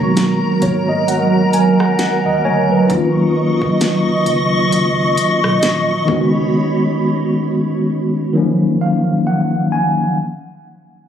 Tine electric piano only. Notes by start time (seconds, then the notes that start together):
Already playing: D#3 G#3 A#3 B3 F#4
0.63 C#5
0.89 D#5
1.08 F#5
1.54 G#5
1.80 F#5
1.99 F#5
2.26 D#5
2.45 C#5 G#5
2.71 B4
2.87 D#3 F3 A#3
2.92 F#3 C#4 F4
6.05 D#3 G#3 B3
6.10 C#4 F#4
8.33 D#3 F#3 A#3
8.38 F3 C#4
8.81 F5
9.27 F#5
9.72 G#5